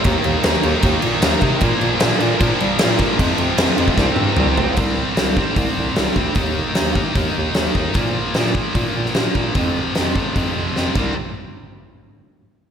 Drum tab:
CC |x-x-x-x-x-x-x-x-|x-x-x-x-x-x-x-x-|x-x-x-x---------|x---------------|
HH |----------------|----------------|----------------|----o---o---o---|
SD |----o-------o---|----o-------o---|----o---o-------|----o-------o---|
T1 |----------------|----------------|----------o-----|----------------|
T2 |----------------|----------------|------------o---|----------------|
FT |----------------|----------------|--------------o-|----------------|
BD |o-------o-----o-|o-------o-----o-|o------oo-------|o-----o-o-----o-|

CC |----------------|----------------|--------------x-|----------------|
HH |o---o---o---o---|o---o---o---o---|o---o---o-------|----------------|
SD |----o-------o---|----oo-----oo---|----o-------o---|----------------|
T1 |----------------|----------------|----------------|----------------|
T2 |----------------|----------------|----------------|----------------|
FT |----------------|----------------|----------------|----------------|
BD |o-----o-o-----o-|o-----o-o-----o-|o-----o-o-----o-|----------------|